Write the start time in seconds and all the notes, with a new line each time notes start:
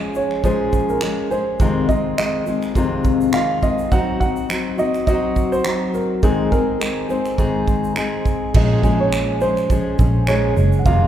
Already playing: F3 G#3 C#4 G#4 D#5
0.15 C#5, shaker
0.31 finger snap
0.43 A#2 F3 G#3 C#4 G#4 C5, kick, shaker
0.73 kick, shaker
0.89 A#4, shaker
1.01 F3 G#3 C#4 G#4, finger snap, shaker
1.31 G#3 C#4 G#4 C5, shaker
1.60 F2 C3 D#3 G#3 C4 F4, kick, shaker
1.89 D#3 G#3 C4 F4 D#5, kick, shaker
2.18 D#3 G#3 C4 F4 D#5, finger snap, shaker
2.46 D#3 G#3 C4 F4, shaker
2.62 finger snap, shaker
2.75 F2 C3 D#3 G#3 C4 F4, kick, shaker
3.04 kick, shaker
3.21 shaker
3.33 D#3 G#3 C4 F4 F5, finger snap, shaker
3.62 D#3 G#3 C4 F4 D#5, kick, shaker
3.78 shaker
3.91 F#3 C4 D#4 F#4 F#5, kick, shaker
4.20 C4 D#4 F#4 F#5, kick, shaker
4.36 shaker
4.49 F#3 C4 D#4 F#4, finger snap, shaker
4.78 C4 D#4 F#4 D#5, shaker
4.94 finger snap, shaker
5.07 F#3 C4 D#4 F#4 D#5, kick, shaker
5.36 kick, shaker
5.52 C5, shaker
5.64 F#3 C4 D#4 F#4, finger snap, shaker
5.94 A#4, shaker
6.22 G#2 D#3 G#3 C4 D#4 G#4, kick, shaker
6.51 G#3 C4 D#4 G#4 A#4, kick, shaker
6.80 G#3 C4 D#4 G#4, finger snap, shaker
7.09 G#3 C4 D#4 G#4 C5, shaker
7.25 finger snap, shaker
7.38 G#2 D#3 G#3 C4 D#4 G#4, kick, shaker
7.67 kick, shaker
7.84 shaker
7.96 G#3 C4 D#4 G#4, finger snap, shaker
8.26 kick, shaker
8.54 A#1 A#2 F3 G#3 C#4 G#4 D#5, kick, crash
8.83 A#2 F3 G#3 C#4 G#4, kick, shaker
9.00 C#5
9.13 finger snap, shaker
9.41 G#3 C#4 G#4 C5, shaker
9.57 finger snap, shaker
9.70 F3 G#3 C#4 G#4, kick, shaker
9.99 A#1 G#3 C#4 G#4, kick, shaker
10.27 A#2 F3 G#3 C#4 G#4 C#5, finger snap, shaker
10.56 F#1 G#3 C#4 G#4, shaker
10.72 shaker
10.79 F#5
10.85 F1 F2 C3 D#3 G#3 C4 F4 F5, kick, shaker